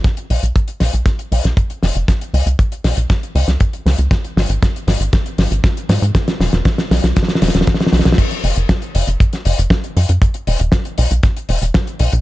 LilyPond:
<<
  \new Staff \with { instrumentName = "Analog synth bass" } { \clef bass \time 4/4 \key b \mixolydian \tempo 4 = 118 r8 b,,16 b,,16 r8 b,,16 b,,16 r8 b,,16 b,,16 r8 fis,,16 fis,,16 | r8 cis,16 cis,16 r8 b,,16 b,,16 r8 cis,16 cis,16 r8 cis,16 cis,16 | r8 gis,,16 gis,,16 r8 gis,,16 gis,,16 r8 gis,,16 gis,,16 r8 gis,16 gis,16 | r8 e,,16 e,,16 r8 b,,16 b,,16 r8 e,,16 e,,16 r8 b,,16 b,,16 |
r8 fis,,16 fis,,16 r8 fis,,16 fis,,16 r8 fis,,16 fis,,16 r8 fis,16 fis,16 | r8 e,,16 e,,16 r8 b,,16 b,,16 r8 e,,16 e,,16 r8 b,,16 b,,16 | }
  \new DrumStaff \with { instrumentName = "Drums" } \drummode { \time 4/4 <hh bd sn>16 hh16 hho16 hh16 <hh bd>16 hh16 <hho sn>16 hh16 <hh bd sn>16 hh16 hho16 <hh sn>16 <hh bd>16 hh16 <hho sn>16 hh16 | <hh bd sn>16 hh16 hho16 hh16 <hh bd>16 hh16 <hho sn>16 hh16 <hh bd sn>16 hh16 hho16 <hh sn>16 <hh bd>16 hh16 <hho sn>16 hh16 | <hh bd sn>16 hh16 <hho sn>16 hh16 <hh bd sn>16 hh16 <hho sn>16 hh16 <hh bd sn>16 hh16 <hho sn>16 hh16 <hh bd sn>16 hh16 <hho sn>16 hh16 | <hh bd sn>16 <hh sn>16 <hho sn>16 <hh sn>16 <hh bd sn>16 <hh sn>16 <hho sn>16 <hh sn>16 <hh bd sn>32 sn32 <hh sn>32 sn32 <hho sn>32 sn32 <hh sn>32 sn32 <hh bd sn>32 sn32 <hh sn>32 sn32 <hho sn>32 sn32 <hh sn>32 sn32 |
<cymc hh bd>16 hh16 hho16 hh16 <hh bd sn>16 hh16 hho16 hh16 <hh bd>16 <hh sn>16 hho16 hh16 <hh bd sn>16 hh16 hho16 hh16 | <hh bd>16 hh16 hho16 hh16 <hh bd sn>16 hh16 hho16 hh16 <hh bd sn>16 hh16 hho16 hh16 <hh bd sn>16 hh16 hho16 hh16 | }
>>